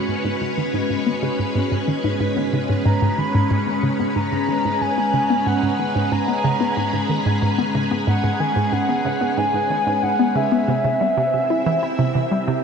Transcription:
Already playing: string machine G#3 C#4 F#4 B4 C#5
0.08 synth arpeggio sound G#2
0.25 synth arpeggio sound G#2
0.41 synth arpeggio sound G#2
0.58 synth arpeggio sound D#3
0.74 synth arpeggio sound G#2
0.90 synth arpeggio sound G#2
1.07 synth arpeggio sound B3
1.23 synth arpeggio sound C#3
1.39 synth arpeggio sound G#2
1.55 synth arpeggio sound G#2
1.72 synth arpeggio sound G#2
1.88 synth arpeggio sound D#3
2.04 synth arpeggio sound G#2
2.20 synth arpeggio sound G#2
2.37 synth arpeggio sound B3
2.53 synth arpeggio sound C#3
2.70 synth arpeggio sound G#2
2.85 synth arpeggio sound G#2, soft synth lead A#5
3.02 synth arpeggio sound G#2
3.18 synth arpeggio sound D#3, soft synth lead B5
3.35 synth arpeggio sound G#2
3.51 synth arpeggio sound G#2
3.67 synth arpeggio sound B3
3.83 synth arpeggio sound C#3
4.00 synth arpeggio sound B3, string machine G#4
4.16 synth arpeggio sound G#2, soft synth lead A#5
4.32 synth arpeggio sound G#2
4.49 synth arpeggio sound D#3
4.65 synth arpeggio sound G#2
4.81 synth arpeggio sound G#2, soft synth lead G#5
4.98 synth arpeggio sound B3
5.14 synth arpeggio sound C#3
5.30 synth arpeggio sound B3
5.46 synth arpeggio sound G#2, soft synth lead F#5
5.63 synth arpeggio sound G#2
5.79 synth arpeggio sound D#3
5.96 synth arpeggio sound G#2
6.12 synth arpeggio sound G#2, soft synth lead A#5
6.28 synth arpeggio sound B3
6.44 synth arpeggio sound C#3
6.61 synth arpeggio sound B3
6.77 synth arpeggio sound G#2
6.93 synth arpeggio sound G#2
7.09 synth arpeggio sound D#3
7.26 synth arpeggio sound G#2
7.42 synth arpeggio sound G#2
7.58 synth arpeggio sound B3
7.75 synth arpeggio sound C#3
7.91 synth arpeggio sound B3
8.07 synth arpeggio sound G#2, soft synth lead F#5
8.24 synth arpeggio sound G#2
8.40 synth arpeggio sound D#3, soft synth lead G#5
8.56 synth arpeggio sound G#2
8.72 synth arpeggio sound G#2, soft synth lead F#5
8.89 synth arpeggio sound B3
9.05 synth arpeggio sound C#3
9.21 synth arpeggio sound B3
9.38 synth arpeggio sound G#2, soft synth lead G#5
9.54 synth arpeggio sound G#2
9.70 synth arpeggio sound D#3
9.87 synth arpeggio sound G#2
10.03 synth arpeggio sound G#2, soft synth lead F#5
10.19 synth arpeggio sound B3
10.36 synth arpeggio sound C#3, soft synth lead E5
10.52 synth arpeggio sound B3
10.68 synth arpeggio sound C3, string machine C4
10.85 synth arpeggio sound C3
10.95 string machine E5
11.01 synth arpeggio sound G3
11.12 string machine E4
11.17 synth arpeggio sound C3
11.34 synth arpeggio sound C3
11.44 string machine G4
11.50 synth arpeggio sound E4
11.66 synth arpeggio sound E3
11.83 synth arpeggio sound E4, string machine A#4
11.99 synth arpeggio sound C3
12.15 synth arpeggio sound C3
12.31 synth arpeggio sound G3
12.48 synth arpeggio sound C3

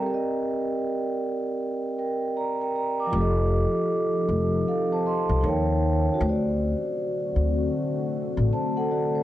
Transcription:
Already playing: vibraphone G5
0.00 vibraphone C4 G4
0.06 vibraphone A#4 D5
0.14 vibraphone D#5
1.98 vibraphone A#4 G5
2.37 vibraphone D5 A#5
2.61 vibraphone A#4 G5
2.76 vibraphone D5 A#5
3.00 vibraphone D6
3.07 vibraphone F3 F4
3.13 upright bass F1, ambient pad F3 C4 D#4 A4, vibraphone G4
3.18 vibraphone A4 D#5
4.28 upright bass F1
4.68 vibraphone A4 F5
4.92 vibraphone C5 A5
5.06 vibraphone D#5 C6
5.29 upright bass C2, vibraphone C5 A5
5.41 upright bass D#2, vibraphone D#4 A#4 C#5
5.47 vibraphone F5 G5
6.14 vibraphone F#4
6.20 upright bass D2, ambient pad D3 A3 C4 F#4, vibraphone C5
6.29 vibraphone D5
7.36 upright bass D2
8.37 upright bass A1
8.53 vibraphone C5 A5
8.77 vibraphone A4 F#5
8.91 vibraphone F#4 D5
9.15 vibraphone C5

